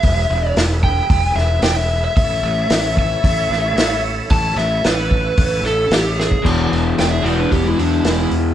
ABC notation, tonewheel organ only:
X:1
M:4/4
L:1/8
Q:1/4=112
K:E
V:1 name="Tonewheel organ"
[EGBe]8 | [EAce]8- | [EAce]8 | [EGBe]8 |]